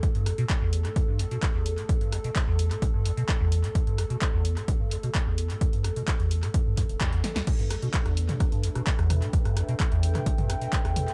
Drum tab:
CC |----------------|----------------|----------------|----------------|
HH |xxoxx-oxx-oxx-ox|xxoxx-oox-oxx-ox|xxoxx-oxx-oxx-ox|xxoxxxoox-oxxxox|
CP |----x-------x---|----x-------x---|----x-------x---|----x-------x---|
SD |--r----r----r---|--r----r----r---|--r----r----r---|--r----r----r-oo|
T2 |----------------|----------------|----------------|----------------|
BD |o---o---o---o---|o---o---o---o---|o---o---o---o---|o---o---o-o-o---|

CC |x---------------|----------------|
HH |xxoxxxoxxxoxxxox|xxoxxxoxxxoxxxox|
CP |----x-------x---|----x-------x---|
SD |--r--r--r--r-rr-|-rr-r--r--r--r--|
T2 |-------o------o-|-------o-o----o-|
BD |o---o---o---o---|o---o---o---o---|